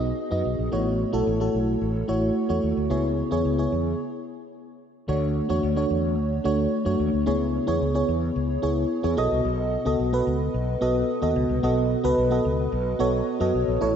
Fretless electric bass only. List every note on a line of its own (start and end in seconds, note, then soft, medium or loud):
0.00 0.11 B1 medium
0.31 0.42 F#2 medium
0.45 0.55 B1 medium
0.59 0.69 A#1 medium
0.72 1.03 A1 loud
1.13 1.23 B1 medium
1.27 1.47 A1 medium
1.54 1.75 B1 medium
1.81 2.02 A1 medium
2.09 2.29 A1 medium
2.50 2.60 E2 medium
2.63 2.74 D#2 medium
2.77 2.87 D2 medium
2.91 3.21 C#2 medium
3.31 3.42 E2 medium
3.45 3.65 C#2 medium
3.72 3.93 E2 medium
5.09 5.39 D2 loud
5.50 5.60 E2 medium
5.63 5.84 D2 medium
5.90 6.18 E2 medium
6.18 6.38 D2 loud
6.45 6.65 D2 medium
6.86 6.96 F#2 medium
7.00 7.10 D#2 medium
7.13 7.24 D2 medium
7.27 7.58 C#2 loud
7.68 7.78 E2 medium
7.81 8.02 C#2 medium
8.08 8.29 E2 medium
8.36 8.56 C#2 medium
8.63 8.84 C#2 medium
9.04 9.14 E2 medium
9.18 9.28 B1 medium
9.31 9.41 C2 medium
9.45 9.76 B1 medium
9.86 9.96 C#2 medium
9.99 10.20 B1 medium
10.27 10.47 C#2 medium
10.54 10.75 B1 loud
10.81 11.02 B1 medium
11.22 11.32 D#2 medium
11.36 11.46 C#2 loud
11.49 11.60 C2 medium
11.63 11.94 B1 loud
12.04 12.14 C#2 medium
12.18 12.38 B1 medium
12.45 12.65 C#2 medium
12.72 12.93 B1 loud
13.00 13.20 B1 medium
13.40 13.51 F#2 loud
13.54 13.64 B1 loud
13.68 13.78 A#1 medium
13.81 13.96 A1 loud